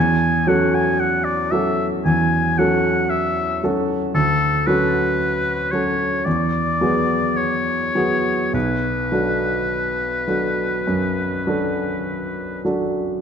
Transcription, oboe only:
Already playing: G#5
0.48 F#5
0.74 G#5
1.00 F#5
1.24 D5
1.51 E5
2.05 G#5
2.58 F#5
3.10 E5
4.15 A4
4.66 B4
5.72 C#5
6.25 D5
7.37 C#5
8.54 B4

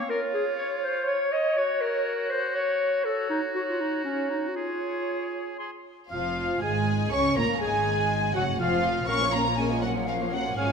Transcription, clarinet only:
0.10 A#4
0.34 G#4
0.58 C#5
0.83 C5
1.08 C#5
1.32 D#5
1.57 C#5
1.81 A#4
2.30 C5
2.55 C#5
3.05 A4
3.30 D#4
3.55 F#4
3.69 F4
3.80 D#4
4.04 C#4
4.30 D#4
4.48 F#4
4.55 F4
6.11 F4
6.62 G#4
7.12 C#5
7.37 A#4
7.61 G#4
8.34 F#4
8.60 F4
9.08 A#4
10.58 C#5

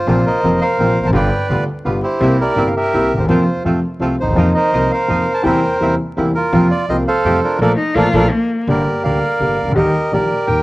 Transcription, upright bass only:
0.07 A#1
0.43 F1
0.78 A#1
1.00 E1 F1
1.08 F#1
1.13 G1
1.49 D2
1.86 G1
2.21 C2
2.56 G1
2.93 C2
3.16 D2 D#2
3.24 E2
3.29 F2
3.64 F2
4.00 C2
4.23 D2
4.28 D#2
4.32 E2
4.36 F2
4.72 C2
5.09 F2
5.44 E2
5.81 E2
6.17 E2
6.53 F2
6.89 C2
7.24 F2
7.59 A#1
7.95 A#1
8.13 A#1
8.67 G1
9.04 D2
9.40 G1
9.62 C2
9.67 C#2 D2
9.76 D#2
10.12 A#1
10.47 D#2

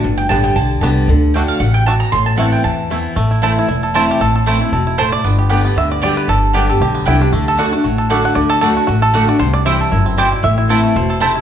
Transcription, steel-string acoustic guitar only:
0.04 G2
0.29 D3 G3 B3 G4
0.57 D3
0.81 D3 G3 B3 G4
1.09 D3
1.35 D3 A3 D4 F#4
1.61 C3
1.87 B2
2.12 A2
2.36 E3 B3 C4 E4
2.64 E3
2.90 E3 B3 C4 E4
3.17 A2
3.42 E3 A3 C4 E4
3.68 E2
3.95 E3 A3 C4 E4
4.21 A2
4.46 E3 A3 C4 E4
4.61 C4 E4
4.73 B2
4.99 A2
5.24 G2
5.50 D3 G3 B3 G4
5.76 D3
6.02 D3 G3 B3 G4
6.29 G2
6.55 D3 G3 B3 G4
6.70 B3 G4
6.82 D3
7.07 D3 G3 B3 G4
7.21 B3 G4
7.33 D3
7.58 D3 A3 D4 F#4
7.72 D4 F#4
7.84 A2
8.10 D3 A3 D4 F#4
8.36 D3
8.61 D3 A3 D4 F#4
8.88 A2
9.13 D3 A3 D4 F#4
9.27 D4 F#4
9.39 C3
9.65 E3 G3 C4 E4
9.92 F#2
10.17 B2
10.43 A2
10.68 E3 A3 C4 E4
10.96 B2
11.20 C3

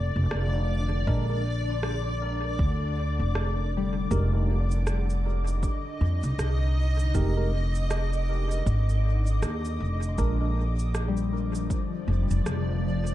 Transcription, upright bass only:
Already playing: F1
0.16 F1
0.32 F1
1.07 A#1
2.59 D2
3.19 F1
4.11 F1
6.01 F2
6.23 C2
6.38 C2
7.15 F1
8.66 G#1
9.42 D#2
9.80 F1
10.18 A#1
12.08 F1
12.31 F1
12.46 F1

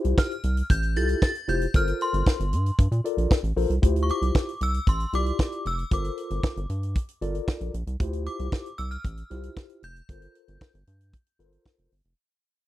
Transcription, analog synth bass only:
0.05 C2
0.44 C2
0.70 A1
0.96 C2
1.48 F1
1.74 G1
2.13 G1
2.40 G1
2.52 G2
2.79 G2
2.91 A#2
3.17 A#1
3.43 A1
3.56 A#1
3.70 C2
3.83 D2
4.22 C2
4.61 C2
4.87 A1
5.13 C2
5.66 F1
5.91 G1
6.31 G1
6.57 G1
6.70 G2
7.21 G1
7.61 A#1
7.74 A#1
7.87 C2
8.00 D2
8.40 C2
8.79 C2
9.05 A1
9.31 C2
9.83 F1
10.09 G1
10.48 G1
10.74 G1
10.87 G2
11.39 G1
11.79 F1
11.92 G1
12.05 F1

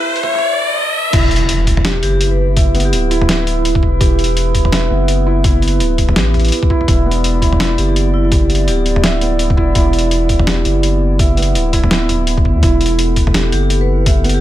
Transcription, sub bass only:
1.13 E1
2.02 F#1
2.92 D1
3.83 E1
4.01 E1
4.90 F#1
5.80 D1
6.16 A1
6.88 E1
7.78 F#1
8.68 D1
9.57 E1
9.76 E1
10.65 F#1
11.55 D1
12.45 G1
12.55 E2
12.63 E1
13.52 F#1

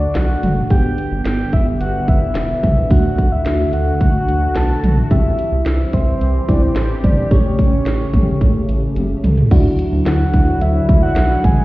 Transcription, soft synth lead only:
Already playing: D5
0.16 F#5
0.71 G5
1.26 G5
1.53 E5
1.80 F#5
2.08 E5
2.91 F#5
3.32 E5
3.73 F#5
4.01 F#5
4.56 A5
5.11 E5
5.66 E5
5.93 C5
6.49 D5
6.62 C5
7.04 D5
7.31 C#5
10.06 F#5
10.62 E5
11.03 F#5
11.44 G#5

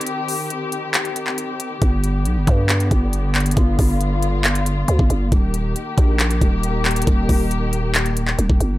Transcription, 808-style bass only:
1.82 G1
2.26 B1
2.36 G1
2.47 G2
2.91 G1
3.57 G1
3.79 G1
4.88 D2
4.99 G1
5.10 G1
5.32 D#1
5.98 A#1
6.41 D#1
7.07 D#1
7.29 D#1
8.39 D#1
8.50 D#1
8.60 G1

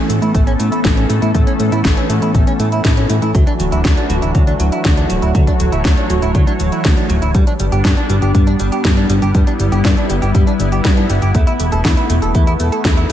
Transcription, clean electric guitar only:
0.09 A3
0.22 E4
0.34 A3
0.47 C#4
0.59 A3
0.72 E4
0.84 A3
0.97 C#4
1.09 A3
1.22 E4
1.35 A3
1.47 C#4
1.60 A3
1.72 E4
1.85 A3
1.97 C#4
2.10 A3
2.22 E4
2.35 A3
2.47 C#4
2.60 A3
2.72 E4
2.85 A3
2.97 C#4
3.10 A3
3.22 E4
3.35 F#3
3.47 D4
3.60 F#3
3.72 E4
3.85 F#3
3.97 D4
4.10 F#3
4.22 E4
4.35 F#3
4.47 D4
4.60 F#3
4.72 E4
4.85 F#3
4.98 D4
5.10 F#3
5.22 E4
5.35 F#3
5.47 D4
5.60 F#3
5.72 E4
5.85 F#3
5.97 D4
6.10 F#3
6.22 E4
6.35 F#3
6.47 D4
6.60 F#3
6.72 E4
6.85 F#3
6.97 D4
7.10 F#3
7.22 E4
7.35 G3
7.47 D4
7.60 G3
7.72 G4
7.85 G3
7.97 D4
8.10 G3
8.22 G4
8.35 G3
8.47 D4
8.60 G3
8.72 G4
8.85 G3
8.97 D4
9.10 G3
9.22 G4
9.35 G3
9.47 D4
9.60 G3
9.72 G4
9.85 G3
9.97 D4
10.10 G3
10.22 G4
10.35 G3
10.47 D4
10.60 G3
10.72 G4
10.85 G3
10.97 D4
11.10 G3
11.22 G4
11.35 A3
11.47 E4
11.60 A3
11.72 A4
11.85 A3
11.97 E4
12.10 A3
12.22 A4
12.35 A3
12.47 E4
12.60 A3
12.72 A4
12.85 A3
12.97 E4

